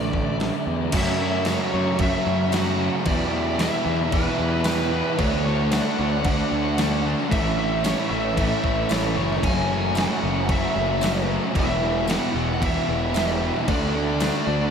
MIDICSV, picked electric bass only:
0, 0, Header, 1, 2, 480
1, 0, Start_track
1, 0, Tempo, 530504
1, 850, Time_signature, 4, 2, 24, 8
1, 13305, End_track
2, 0, Start_track
2, 0, Title_t, "Picked electric bass"
2, 0, Program_c, 0, 34
2, 0, Note_on_c, 0, 33, 89
2, 444, Note_off_c, 0, 33, 0
2, 606, Note_on_c, 0, 40, 99
2, 794, Note_off_c, 0, 40, 0
2, 842, Note_on_c, 0, 42, 101
2, 1403, Note_off_c, 0, 42, 0
2, 1573, Note_on_c, 0, 42, 93
2, 1943, Note_off_c, 0, 42, 0
2, 2051, Note_on_c, 0, 42, 90
2, 2608, Note_off_c, 0, 42, 0
2, 2773, Note_on_c, 0, 40, 107
2, 3330, Note_off_c, 0, 40, 0
2, 3491, Note_on_c, 0, 40, 89
2, 3863, Note_off_c, 0, 40, 0
2, 3977, Note_on_c, 0, 40, 95
2, 4532, Note_off_c, 0, 40, 0
2, 4695, Note_on_c, 0, 38, 99
2, 5252, Note_off_c, 0, 38, 0
2, 5424, Note_on_c, 0, 38, 95
2, 5791, Note_off_c, 0, 38, 0
2, 5900, Note_on_c, 0, 38, 85
2, 6455, Note_off_c, 0, 38, 0
2, 6621, Note_on_c, 0, 33, 109
2, 7176, Note_off_c, 0, 33, 0
2, 7339, Note_on_c, 0, 33, 91
2, 7708, Note_off_c, 0, 33, 0
2, 7815, Note_on_c, 0, 33, 88
2, 8000, Note_off_c, 0, 33, 0
2, 8060, Note_on_c, 0, 33, 78
2, 8272, Note_off_c, 0, 33, 0
2, 8297, Note_on_c, 0, 30, 85
2, 8510, Note_off_c, 0, 30, 0
2, 8540, Note_on_c, 0, 30, 110
2, 9096, Note_off_c, 0, 30, 0
2, 9261, Note_on_c, 0, 30, 81
2, 9630, Note_off_c, 0, 30, 0
2, 9735, Note_on_c, 0, 30, 83
2, 10292, Note_off_c, 0, 30, 0
2, 10454, Note_on_c, 0, 28, 109
2, 11011, Note_off_c, 0, 28, 0
2, 11170, Note_on_c, 0, 28, 89
2, 11543, Note_off_c, 0, 28, 0
2, 11658, Note_on_c, 0, 28, 94
2, 12213, Note_off_c, 0, 28, 0
2, 12381, Note_on_c, 0, 38, 111
2, 12935, Note_off_c, 0, 38, 0
2, 13095, Note_on_c, 0, 38, 90
2, 13305, Note_off_c, 0, 38, 0
2, 13305, End_track
0, 0, End_of_file